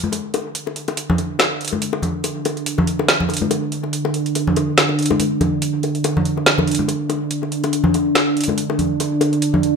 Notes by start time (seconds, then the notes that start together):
Already playing: D4
0.04 high conga
0.12 closed hi-hat, high bongo
0.34 closed hi-hat, high bongo
0.55 closed hi-hat
0.67 high bongo
0.76 closed hi-hat
0.88 closed hi-hat, high bongo
0.97 closed hi-hat
1.10 low conga
1.18 closed hi-hat, high bongo
1.39 snare, closed hi-hat, high bongo
1.61 closed hi-hat
1.65 closed hi-hat
1.68 closed hi-hat
1.73 high bongo, high conga
1.82 closed hi-hat
1.93 high bongo
2.02 closed hi-hat, low conga
2.24 closed hi-hat, high bongo
2.45 closed hi-hat, high bongo
2.57 closed hi-hat
2.66 closed hi-hat
2.78 high bongo, low conga
2.87 closed hi-hat
2.99 high bongo
3.08 snare, closed hi-hat
3.20 low conga
3.29 closed hi-hat, high bongo
3.34 closed hi-hat
3.37 closed hi-hat
3.42 high conga
3.51 closed hi-hat, high bongo
3.72 closed hi-hat
3.84 high bongo
3.93 closed hi-hat
4.05 high bongo
4.14 closed hi-hat
4.26 closed hi-hat
4.35 closed hi-hat, high bongo
4.47 low conga
4.56 closed hi-hat, high bongo
4.78 snare, closed hi-hat
4.89 high bongo
4.99 closed hi-hat
5.03 closed hi-hat
5.06 closed hi-hat
5.11 high bongo, high conga
5.20 closed hi-hat, high conga
5.41 closed hi-hat, high bongo, low conga
5.62 closed hi-hat
5.83 closed hi-hat, high bongo
5.95 closed hi-hat
6.04 closed hi-hat, high bongo
6.17 low conga
6.25 closed hi-hat
6.37 high bongo
6.46 snare, closed hi-hat
6.58 high bongo, low conga
6.67 closed hi-hat
6.71 closed hi-hat
6.75 closed hi-hat
6.79 high conga
6.88 closed hi-hat, high bongo
7.09 closed hi-hat, high bongo
7.31 closed hi-hat
7.43 high bongo
7.52 closed hi-hat
7.64 closed hi-hat, high bongo
7.73 closed hi-hat
7.84 low conga
7.94 closed hi-hat, high bongo
8.15 snare, closed hi-hat, high bongo
8.37 closed hi-hat
8.41 closed hi-hat
8.44 closed hi-hat
8.48 high bongo, high conga
8.58 closed hi-hat
8.70 high bongo
8.79 closed hi-hat, low conga
9.00 closed hi-hat, high bongo
9.21 closed hi-hat, high bongo
9.33 closed hi-hat
9.42 closed hi-hat
9.54 high bongo, low conga
9.63 closed hi-hat